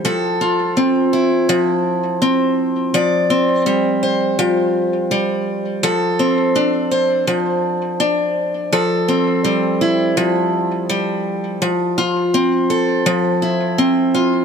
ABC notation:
X:1
M:4/4
L:1/8
Q:"Swing 16ths" 1/4=83
K:F
V:1 name="Steel-string acoustic guitar"
[F,A] F C E F,2 C2 | [F,d] C G, c F,2 G,2 | [F,A] C D c F,2 D2 | [F,A] C G, E F,2 G,2 |
F, F C A F, E C F |]